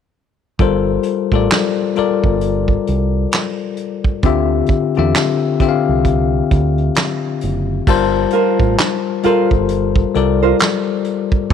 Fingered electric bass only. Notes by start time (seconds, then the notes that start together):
0.60 G1
1.32 A1
1.98 muted fingered electric bass stroke
2.24 G1
2.88 C2
4.24 D2
4.98 E2
5.61 muted fingered electric bass stroke
5.89 C2
6.52 D2
7.43 F#1
7.88 G1
8.60 A1
9.25 muted fingered electric bass stroke
9.52 G1
10.15 C2